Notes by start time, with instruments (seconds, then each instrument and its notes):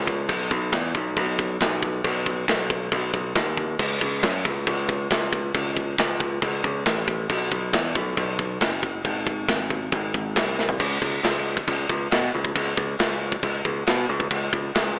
Already playing: picked electric bass C#2
0.07 kick
0.29 picked electric bass B1, kick, china
0.51 picked electric bass B1, kick
0.72 picked electric bass E2, kick, snare, china
0.95 picked electric bass B1, kick
1.16 picked electric bass B1, kick, china
1.39 kick
1.61 picked electric bass B1, kick, snare, china
1.83 kick
2.04 picked electric bass B1, kick, china
2.26 kick
2.48 picked electric bass B1, kick, snare, china
2.70 kick
2.92 picked electric bass B1, kick, china
3.13 picked electric bass B1, kick
3.35 picked electric bass D#2, kick, snare, china
3.57 kick
3.79 picked electric bass C#2, kick, crash, china
4.01 picked electric bass C#2, kick
4.23 picked electric bass F#2, kick, snare, china
4.45 picked electric bass C#2, kick
4.67 picked electric bass C#2, kick, china
4.89 kick
5.11 picked electric bass C#2, kick, snare, china
5.33 kick
5.54 picked electric bass C#2, kick, china
5.76 kick
5.98 picked electric bass C#2, kick, snare, china
6.20 kick
6.42 picked electric bass C#2, kick, china
6.64 picked electric bass C#2, kick
6.86 picked electric bass A1, kick, snare, china
7.08 kick
7.30 picked electric bass B1, kick, china
7.52 picked electric bass B1, kick
7.73 picked electric bass E2, kick, snare, china
7.95 picked electric bass B1, kick
8.17 picked electric bass B1, kick, china
8.39 kick
8.61 picked electric bass F#1, kick, snare, china
8.83 kick
9.05 picked electric bass G#1, kick, china
9.27 kick
9.48 picked electric bass G#1, kick, snare, china
9.70 kick
9.92 picked electric bass G#1, kick, china
10.14 picked electric bass G#1, kick
10.36 picked electric bass C2, kick, snare, china
10.59 snare
10.69 floor tom
10.80 picked electric bass C#2, kick, crash, china
11.02 picked electric bass C#2, kick
11.23 picked electric bass C#2, snare, china
11.57 kick
11.68 picked electric bass C#2, kick, china
11.89 picked electric bass C#2, kick
12.11 picked electric bass B2, snare, china
12.35 picked electric bass C#2
12.45 kick
12.56 picked electric bass C#2, kick, china
12.77 picked electric bass C#2, kick
12.99 picked electric bass C#2, snare, china
13.32 kick
13.43 picked electric bass C#2, kick, china
13.65 picked electric bass C#2, kick
13.87 picked electric bass B2, snare, china
14.09 picked electric bass C#2
14.20 kick
14.31 picked electric bass C#2, kick, china
14.53 picked electric bass C#2, kick
14.75 picked electric bass C#2, snare, china